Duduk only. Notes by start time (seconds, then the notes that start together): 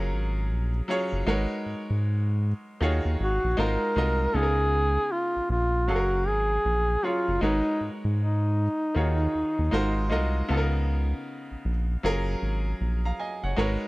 3.23 F#4
3.60 A#4
4.36 G#4
5.12 F4
5.51 F4
5.89 F#4
6.28 G#4
7.05 F4
7.43 D#4
8.20 D#4